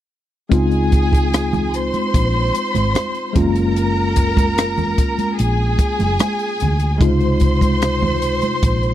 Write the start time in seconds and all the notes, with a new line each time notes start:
0.49 C#2 G#3 C4 D#4 F4 G#4 G#5, kick, closed hi-hat, muted conga
0.71 closed hi-hat
0.92 kick, closed hi-hat, muted conga
1.12 kick, closed hi-hat, high conga
1.32 cross-stick, closed hi-hat, muted conga
1.53 closed hi-hat, high conga, low conga
1.74 C5 C6, closed hi-hat
1.94 closed hi-hat, high conga
2.14 A#1, kick, closed hi-hat, muted conga
2.54 closed hi-hat, muted conga
2.75 G#1, cross-stick, closed hi-hat, high conga
2.95 cross-stick, closed hi-hat, muted conga, high conga
3.15 closed hi-hat
3.33 F#1 G#3 A#3 C#4 A#4 A#5, kick, closed hi-hat
3.37 F4, low conga
3.55 closed hi-hat
3.76 closed hi-hat
4.16 kick, closed hi-hat, muted conga
4.37 kick, closed hi-hat, high conga
4.57 cross-stick, closed hi-hat, muted conga
4.78 closed hi-hat, high conga, low conga
4.98 kick, closed hi-hat, muted conga
5.19 closed hi-hat, high conga
5.39 A#1 G#4 G#5, closed hi-hat, muted conga
5.78 kick, closed hi-hat, muted conga
5.99 F#1, cross-stick, closed hi-hat, high conga
6.19 cross-stick, closed hi-hat, muted conga, high conga
6.39 closed hi-hat
6.60 D2, closed hi-hat, muted conga, low conga
6.79 closed hi-hat
6.98 C#2 C3 G#3 D#4 F4 C5 C6, kick, closed hi-hat, muted conga
7.21 closed hi-hat
7.40 kick, closed hi-hat, muted conga
7.61 kick, closed hi-hat, high conga
7.82 cross-stick, closed hi-hat, muted conga
8.02 high conga, low conga
8.22 closed hi-hat, muted conga
8.42 closed hi-hat, high conga
8.63 A#1, kick, closed hi-hat
8.83 closed hi-hat